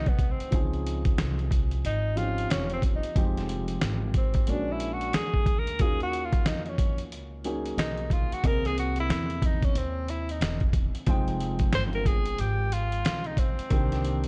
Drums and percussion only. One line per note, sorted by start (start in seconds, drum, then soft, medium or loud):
0.06 kick medium
0.06 closed hi-hat soft
0.19 kick medium
0.19 closed hi-hat medium
0.40 closed hi-hat medium
0.52 kick loud
0.52 closed hi-hat medium
0.73 closed hi-hat soft
0.86 closed hi-hat medium
1.05 kick loud
1.05 closed hi-hat medium
1.18 snare loud
1.18 closed hi-hat medium
1.39 closed hi-hat soft
1.51 kick loud
1.51 closed hi-hat medium
1.71 closed hi-hat soft
1.85 closed hi-hat medium
2.17 closed hi-hat medium
2.38 closed hi-hat medium
2.50 snare loud
2.50 closed hi-hat medium
2.70 closed hi-hat soft
2.82 kick medium
2.82 closed hi-hat medium
3.03 closed hi-hat medium
3.16 kick loud
3.16 closed hi-hat medium
3.37 snare soft
3.37 closed hi-hat soft
3.49 closed hi-hat medium
3.68 closed hi-hat medium
3.81 snare loud
3.81 closed hi-hat medium
4.14 kick loud
4.14 closed hi-hat medium
4.34 kick medium
4.34 closed hi-hat medium
4.47 closed hi-hat medium
4.80 closed hi-hat medium
5.01 closed hi-hat soft
5.13 snare loud
5.13 closed hi-hat medium
5.34 kick medium
5.46 kick medium
5.46 closed hi-hat medium
5.67 closed hi-hat medium
5.79 kick loud
5.79 closed hi-hat medium
6.00 closed hi-hat soft
6.13 closed hi-hat medium
6.32 kick medium
6.32 closed hi-hat soft
6.46 snare loud
6.46 closed hi-hat medium
6.66 closed hi-hat soft
6.78 kick loud
6.78 closed hi-hat medium
6.98 closed hi-hat soft
7.12 closed hi-hat medium
7.44 closed hi-hat medium
7.66 closed hi-hat soft
7.78 snare loud
7.78 closed hi-hat medium
7.98 closed hi-hat soft
8.10 kick medium
8.10 closed hi-hat medium
8.32 closed hi-hat medium
8.44 kick loud
8.44 closed hi-hat medium
8.65 snare soft
8.65 closed hi-hat soft
8.78 closed hi-hat medium
8.96 closed hi-hat soft
9.10 snare medium
9.10 closed hi-hat medium
9.30 closed hi-hat soft
9.42 kick medium
9.42 closed hi-hat medium
9.62 kick medium
9.62 closed hi-hat soft
9.75 closed hi-hat loud
10.08 closed hi-hat medium
10.29 closed hi-hat medium
10.41 snare loud
10.41 closed hi-hat medium
10.60 kick medium
10.60 closed hi-hat soft
10.73 kick medium
10.73 closed hi-hat medium
10.95 closed hi-hat medium
11.06 kick loud
11.06 closed hi-hat medium
11.28 closed hi-hat soft
11.40 closed hi-hat medium
11.59 kick loud
11.59 closed hi-hat soft
11.73 snare loud
11.73 closed hi-hat medium
11.93 closed hi-hat soft
12.05 kick medium
12.05 closed hi-hat medium
12.25 closed hi-hat medium
12.38 closed hi-hat medium
12.72 closed hi-hat medium
12.92 closed hi-hat medium
13.05 snare loud
13.05 closed hi-hat medium
13.24 closed hi-hat soft
13.37 kick medium
13.37 closed hi-hat medium
13.59 closed hi-hat medium
13.70 kick loud
13.70 closed hi-hat medium
13.92 snare soft
13.92 closed hi-hat soft
14.05 closed hi-hat medium
14.24 closed hi-hat medium